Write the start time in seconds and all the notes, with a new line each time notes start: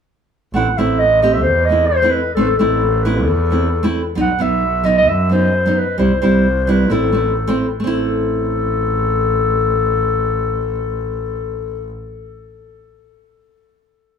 0.54 A1 A3 C4 E4 F#5
0.77 A1 A3 C4 E4 E5
0.99 D#5
1.22 A3 C4 G4 D#5
1.33 E5
1.42 E2 C5
1.65 A3 D#5
1.71 C4 E4
1.87 C5
2.02 A3 C4 E4
2.10 B4
2.34 A1 A3 C4 D#4 A4
2.41 A4 B4
2.58 A1 A3 C4 E4 A4
3.02 A3 C4 E4 B4
3.21 B4
3.26 E2 A4
3.50 A3 C4 E4
3.83 A3 C4 E4
4.15 B1 F#3 B3 D#4
4.20 F#5
4.39 B1 F#3 B3 D#4 E5
4.84 F#3 B3 D#4 D#5
4.97 D#5
5.08 F#2 E5
5.29 F#3 B3 D#4 C5
5.66 F#3 B3 D#4
5.77 B4
5.98 C2 G3 C4 E4 C5
6.21 C2 G3 C4 E4 C5
6.64 G3 C5
6.68 C4 E4 B4
6.90 A1 A3 C4 E4 A4
7.12 A3 C4 E4
7.47 A3 C4 E4
7.80 A3
7.84 A1 C4 E4 A4